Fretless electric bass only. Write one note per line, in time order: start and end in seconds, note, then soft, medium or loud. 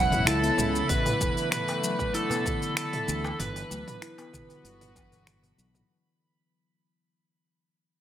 0.00 0.26 E1 medium
0.26 0.49 C#2 medium
0.58 0.80 C#2 medium
0.90 1.12 A1 loud
1.21 1.32 E1 medium
3.08 3.30 D2 medium
3.39 3.62 G1 loud
3.71 3.82 D2 medium
4.64 5.51 G1 medium
5.58 5.80 B1 medium